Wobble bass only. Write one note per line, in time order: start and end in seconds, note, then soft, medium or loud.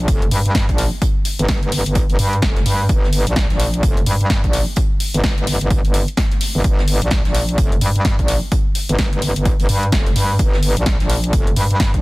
0.08 0.30 F1 loud
0.31 0.43 G2 loud
0.46 0.67 G2 loud
0.69 0.90 A#1 loud
1.39 1.84 G1 loud
1.86 2.07 G1 loud
2.10 2.17 G1 loud
2.19 2.41 G2 loud
2.42 2.64 F1 loud
2.66 2.88 G2 loud
2.89 3.25 G1 loud
3.27 3.48 A#1 loud
3.50 3.82 A#1 loud
3.83 4.05 F1 loud
4.06 4.18 G2 medium
4.21 4.42 G2 loud
4.44 4.65 A#1 loud
5.14 5.59 G1 loud
5.61 5.82 G1 medium
5.85 6.06 G1 loud
6.55 6.63 G1 loud
6.64 7.00 G1 loud
7.02 7.23 A#1 loud
7.25 7.57 A#1 loud
7.58 7.80 F1 loud
7.81 7.93 G2 loud
7.96 8.17 G2 loud
8.19 8.40 A#1 loud
8.89 9.34 G1 loud
9.36 9.57 G1 loud
9.60 9.67 G1 medium
9.69 9.91 G2 loud
9.92 10.14 F1 loud
10.16 10.38 G2 medium
10.39 10.75 G1 loud
10.77 10.98 A#1 loud
11.00 11.32 A#1 loud
11.33 11.55 F1 loud
11.56 11.68 G2 loud
11.71 11.92 G2 loud
11.94 12.02 A#1 medium